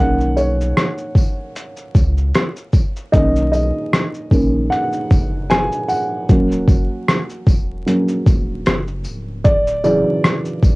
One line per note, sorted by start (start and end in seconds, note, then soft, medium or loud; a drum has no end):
0.00 0.73 B1 loud
0.00 0.51 D#3 medium
0.00 0.51 A#3 medium
0.00 0.52 C#4 medium
0.00 0.38 F#5 loud
0.20 shaker medium
0.36 1.91 C#5 medium
0.36 tambourine medium
0.36 shaker soft
0.61 shaker soft
0.77 cross-stick loud
0.77 closed hi-hat medium
0.77 shaker medium
0.98 shaker soft
1.15 kick loud
1.15 tambourine medium
1.15 shaker soft
1.56 closed hi-hat medium
1.56 shaker medium
1.77 shaker soft
1.95 2.32 C#2 medium
1.95 kick medium
1.95 tambourine soft
1.95 shaker medium
2.17 shaker medium
2.35 cross-stick loud
2.35 closed hi-hat medium
2.35 shaker medium
2.56 shaker soft
2.73 kick medium
2.73 tambourine medium
2.73 shaker soft
2.96 shaker soft
3.12 3.71 B1 loud
3.12 4.30 D#3 medium
3.12 4.30 A#3 medium
3.12 4.31 C#4 medium
3.12 3.50 D#5 medium
3.12 kick loud
3.12 closed hi-hat medium
3.12 shaker medium
3.36 shaker medium
3.52 4.74 D#5 medium
3.52 tambourine soft
3.52 shaker soft
3.93 cross-stick loud
3.93 closed hi-hat medium
3.93 shaker medium
4.14 shaker soft
4.31 4.69 A#1 medium
4.31 4.67 D#3 soft
4.31 4.67 A#3 soft
4.31 4.68 C#4 medium
4.31 kick medium
4.31 tambourine medium
4.31 shaker soft
4.70 5.45 F#5 medium
4.70 closed hi-hat medium
4.70 shaker medium
4.93 shaker soft
5.10 5.68 F#1 medium
5.10 kick medium
5.10 tambourine soft
5.10 shaker soft
5.50 5.91 G#5 loud
5.50 cross-stick loud
5.50 closed hi-hat medium
5.50 shaker medium
5.72 shaker soft
5.88 7.03 F#5 medium
5.88 tambourine medium
5.88 shaker soft
6.29 6.66 D#1 loud
6.29 6.83 F#3 medium
6.29 6.84 A#3 soft
6.29 6.84 C#4 medium
6.29 kick loud
6.29 closed hi-hat medium
6.29 shaker medium
6.52 shaker medium
6.68 6.89 F#1 medium
6.68 kick loud
6.68 tambourine soft
6.68 shaker soft
7.08 cross-stick loud
7.08 closed hi-hat medium
7.08 shaker medium
7.30 shaker soft
7.47 7.84 E1 medium
7.47 kick loud
7.47 tambourine medium
7.47 shaker soft
7.86 8.22 F#3 soft
7.86 8.22 A#3 soft
7.86 8.22 C#4 soft
7.86 closed hi-hat medium
7.86 shaker medium
8.09 shaker soft
8.27 8.64 D#1 medium
8.27 kick medium
8.27 tambourine soft
8.27 shaker medium
8.66 9.08 F#1 loud
8.66 cross-stick loud
8.66 closed hi-hat medium
8.66 shaker medium
8.87 shaker soft
9.04 9.43 C#1 medium
9.04 tambourine medium
9.04 shaker soft
9.44 10.03 D1 loud
9.44 9.81 D5 medium
9.44 kick loud
9.44 closed hi-hat medium
9.44 shaker medium
9.67 shaker medium
9.84 10.39 C#3 medium
9.84 10.38 E3 medium
9.84 10.39 F#3 medium
9.84 10.75 D5 medium
9.84 tambourine medium
9.84 shaker soft
10.24 cross-stick loud
10.24 closed hi-hat medium
10.24 shaker medium
10.45 shaker soft
10.62 10.75 A1 medium
10.62 kick loud
10.62 tambourine medium
10.62 shaker soft